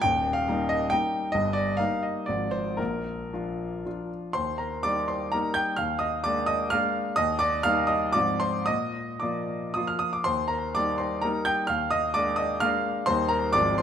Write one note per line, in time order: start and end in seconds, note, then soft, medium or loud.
0.02 0.46 D#1 medium
0.02 0.46 D#2 medium
0.02 0.35 G5 loud
0.33 0.69 F5 loud
0.48 0.88 G3 medium
0.48 0.88 A#3 medium
0.48 0.89 D#4 medium
0.69 0.91 D#5 loud
0.90 1.30 G3 medium
0.90 1.31 A#3 medium
0.90 1.31 D#4 medium
0.90 1.33 G5 loud
1.32 1.78 G1 medium
1.32 1.79 G2 medium
1.32 1.55 D#5 loud
1.53 1.78 D5 loud
1.77 2.24 G3 medium
1.77 2.24 A#3 medium
1.77 2.25 D#4 medium
1.77 2.03 F5 loud
2.03 2.28 D#5 medium
2.26 2.78 G#1 medium
2.26 2.78 G#2 medium
2.26 2.75 F3 soft
2.26 2.75 C4 soft
2.26 2.76 F4 soft
2.26 2.53 D5 medium
2.51 2.78 C5 medium
2.77 3.30 A#1 medium
2.77 3.31 A#2 medium
2.77 4.10 A#4 medium
3.33 3.82 F3 medium
3.33 3.82 D4 medium
3.33 3.82 F4 medium
3.85 4.31 F3 soft
3.85 4.31 D4 soft
3.85 4.32 F4 medium
4.33 4.83 D#2 medium
4.33 4.57 C5 medium
4.33 4.58 C6 loud
4.58 4.83 A#4 medium
4.58 4.84 A#5 medium
4.83 5.30 G3 medium
4.83 5.30 A#3 medium
4.83 5.30 D#4 medium
4.83 5.08 D5 medium
4.83 5.09 D6 loud
5.08 5.32 C5 medium
5.08 5.33 C6 medium
5.32 5.75 G3 medium
5.32 5.75 A#3 medium
5.32 5.75 D#4 medium
5.32 5.55 A#4 medium
5.32 5.56 A#5 loud
5.54 5.77 G5 medium
5.54 5.78 G6 loud
5.76 6.24 D#2 medium
5.76 5.99 F5 medium
5.76 6.00 F6 loud
5.99 6.23 D#5 medium
5.99 6.24 D#6 loud
6.24 6.69 G#3 medium
6.24 6.69 A#3 medium
6.24 6.69 D4 medium
6.24 6.47 D5 medium
6.24 6.48 D6 loud
6.46 6.69 D#5 medium
6.46 6.71 D#6 loud
6.70 7.14 G#3 medium
6.70 7.14 A#3 medium
6.70 7.14 D4 medium
6.70 7.14 F5 loud
6.70 7.16 F6 loud
7.16 7.63 D#2 medium
7.16 7.38 D#5 loud
7.16 7.39 D#6 loud
7.39 7.63 D5 medium
7.39 7.64 D6 loud
7.63 8.12 G3 medium
7.63 8.12 A#3 medium
7.63 8.12 D#4 medium
7.63 7.88 F5 loud
7.63 7.90 F6 loud
7.87 8.13 D#5 medium
7.87 8.14 D#6 loud
8.12 8.66 G#2 medium
8.12 8.63 F3 medium
8.12 8.63 C4 medium
8.12 8.64 F4 medium
8.12 8.39 D5 medium
8.12 8.40 D6 loud
8.40 8.65 C5 medium
8.40 8.67 C6 loud
8.66 9.21 A#2 medium
8.66 9.18 D#5 medium
8.66 9.21 D#6 loud
9.20 9.73 F3 medium
9.20 9.73 A#3 medium
9.20 9.73 F4 medium
9.20 9.73 D5 medium
9.20 9.76 D6 medium
9.74 10.24 F3 medium
9.74 10.24 A#3 medium
9.74 10.24 F4 medium
9.74 9.89 D#6 loud
9.87 10.02 F6 loud
9.99 10.14 D#6 loud
10.13 10.27 D6 medium
10.24 10.75 D#2 medium
10.24 10.49 C5 medium
10.24 10.50 C6 loud
10.48 10.74 A#4 medium
10.48 10.75 A#5 medium
10.75 11.21 G3 medium
10.75 11.21 A#3 medium
10.75 11.21 D#4 medium
10.75 10.99 D5 medium
10.75 11.00 D6 loud
10.98 11.22 C5 medium
10.98 11.23 C6 medium
11.22 11.66 G3 medium
11.22 11.66 A#3 medium
11.22 11.66 D#4 medium
11.22 11.45 A#4 medium
11.22 11.46 A#5 loud
11.45 11.68 G5 medium
11.45 11.69 G6 loud
11.67 12.15 D#2 medium
11.67 11.91 F5 medium
11.67 11.92 F6 loud
11.91 12.14 D#5 medium
11.91 12.16 D#6 loud
12.14 12.60 G#3 medium
12.14 12.60 A#3 medium
12.14 12.60 D4 medium
12.14 12.38 D5 medium
12.14 12.40 D6 loud
12.36 12.61 D#5 medium
12.36 12.62 D#6 loud
12.60 13.04 G#3 medium
12.60 13.04 A#3 medium
12.60 13.05 D4 medium
12.60 13.04 F5 loud
12.60 13.07 F6 loud
13.06 13.54 D#2 medium
13.06 13.52 G3 medium
13.06 13.52 A#3 medium
13.06 13.52 D#4 medium
13.06 13.29 C5 loud
13.06 13.31 C6 loud
13.29 13.53 A#4 medium
13.29 13.54 A#5 loud
13.53 13.82 G#1 medium
13.53 13.82 F3 medium
13.53 13.82 G#3 medium
13.53 13.82 C4 medium
13.53 13.77 D5 loud
13.53 13.79 D6 loud
13.78 13.82 C5 medium
13.78 13.82 C6 loud